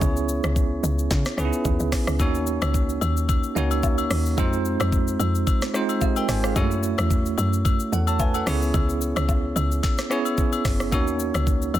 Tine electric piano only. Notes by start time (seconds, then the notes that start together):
Already playing: B3 C#4 E4 G#4 C#5
1.37 B3 C#4 D#4 G#4 B4
1.45 E4
2.19 A#3 C#4 D#4 F#4 C#5
3.55 A#3 C#4 D#4 F#4 C#5
4.37 G#3 C4 D#4 F4 C5
5.74 G#3 C4 D#4 F4 C5
6.02 G4 D#5
6.17 A#4 G5
6.29 C5 G#5
6.44 G#4 F5
6.55 G#3 C#4 E4 F#4 C#5
6.62 A3
7.93 A4 F#5
8.08 C#5 A5
8.20 B4 G#5
8.35 A4 F#5
8.46 B3 C#4 E4 G#4 C#5
10.10 B3 C#4 E4 G#4 C#5
10.92 A#3 C#4 D#4 F#4 C#5